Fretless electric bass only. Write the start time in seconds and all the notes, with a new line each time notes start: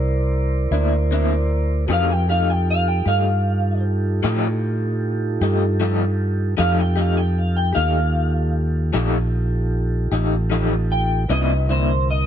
Already playing: C2
0.71 D2
1.89 F2
3.06 G2
4.24 A2
5.41 G2
6.59 F2
7.76 D#2
8.94 A#1
10.12 A1
11.30 C2